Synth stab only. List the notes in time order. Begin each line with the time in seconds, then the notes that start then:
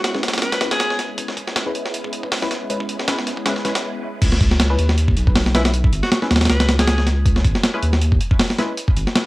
0.14 G#3 C#4 E4 B4
0.61 G#3 C#4 E4 B4
1.66 G#3 C#4 E4 B4
2.42 G#3 C#4 E4 B4
2.70 G#3 C#4 E4 B4
3.08 G#3 C#4 E4 B4
3.46 G#3 C#4 E4 B4
3.65 G#3 C#4 E4 B4
4.70 G#3 C#4 E4 B4
5.55 G#3 C#4 E4 B4
6.22 G#3 C#4 E4 B4
7.74 G#3 C#4 E4 B4
8.58 G#3 C#4 E4 B4